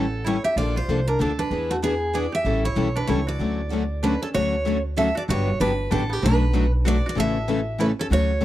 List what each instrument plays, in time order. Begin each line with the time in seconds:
Already playing: upright bass A1, koto A3 C#4 E4 G4, steel-string acoustic guitar A4
0.24 steel-string acoustic guitar E3 G3 C#4 E4 A4 C#5, koto E4
0.44 koto G4, steel-string acoustic guitar E5
0.56 upright bass A#1, steel-string acoustic guitar D3 F3 A#3 D4 A4 D5, koto F4
0.76 koto F4, steel-string acoustic guitar C5
0.88 upright bass C2, steel-string acoustic guitar D3 F3 A#3 D4 A4
1.07 koto D4, steel-string acoustic guitar A#4
1.20 upright bass D2, steel-string acoustic guitar D3 F3 A#3 D4 A4, koto D4
1.39 koto D4, steel-string acoustic guitar B4
1.50 upright bass E2, steel-string acoustic guitar E3 B3 D4 G#4 B4
1.70 koto A3, steel-string acoustic guitar F#4
1.82 steel-string acoustic guitar E3 B3 D4 G#4 B4, koto B3
2.13 steel-string acoustic guitar E3 B3 D4 G#4 B4 D5, koto G#4
2.32 koto G4, steel-string acoustic guitar E5
2.45 upright bass A1, steel-string acoustic guitar E3 G3 C#4 E4 A4
2.65 koto E4, steel-string acoustic guitar C#5
2.75 upright bass B1, steel-string acoustic guitar E3 G3 C#4 E4 A4
2.96 koto D4, steel-string acoustic guitar B4
3.07 upright bass C#2, steel-string acoustic guitar E3 G3 C#4 E4 A4 C#5, koto E4
3.27 koto F#4, steel-string acoustic guitar D5
3.39 upright bass D2, steel-string acoustic guitar D3 F#3 A3 C#4 F#4 A4
3.69 steel-string acoustic guitar D3 F#3 A3 C#4 F#4 A4
4.03 steel-string acoustic guitar D3 F#3 A3 C#4 F#4 A4 B4, koto D4
4.22 koto C#4, steel-string acoustic guitar A4
4.34 upright bass D2, steel-string acoustic guitar D3 F#3 A3 C#4 F#4 A4 C#5, koto F#4
4.65 steel-string acoustic guitar D3 F#3 A3 C#4 F#4 A4
4.96 steel-string acoustic guitar D3 F#3 A3 C#4 F#4 A4 E5, koto A4
5.15 koto F#4, steel-string acoustic guitar D5
5.29 upright bass G1, steel-string acoustic guitar D3 F#3 B3 D4 G4 C#5, koto F#4
5.60 upright bass G1, steel-string acoustic guitar D3 F#3 B3 D4 G4 B4, koto D4
5.91 upright bass A1, steel-string acoustic guitar D3 F#3 B3 D4 G4 A4, koto D4
6.09 koto B3, steel-string acoustic guitar G4
6.22 upright bass B1, steel-string acoustic guitar B2 F#3 A3 D4 F#4 B4, koto D4
6.54 steel-string acoustic guitar B2 F#3 A3 D4 F#4 B4
6.85 steel-string acoustic guitar B2 F#3 A3 D4 F#4 B4 D5, koto F#4
7.06 koto F#4, steel-string acoustic guitar D5
7.15 upright bass A1, steel-string acoustic guitar C#3 E3 A3 C#4 E4 A4, koto A4
7.20 steel-string acoustic guitar E5
7.48 steel-string acoustic guitar C#3 E3 A3 C#4 E4 A4
7.78 steel-string acoustic guitar C#3 E3 A3 C#4 E4 A4 B4, koto E4
7.99 koto C#4, steel-string acoustic guitar A4
8.11 upright bass D2, steel-string acoustic guitar D3 F#3 A3 C#4 F#4 A4 C#5, koto F#4
8.41 steel-string acoustic guitar D3 F#3 A3 C#4 F#4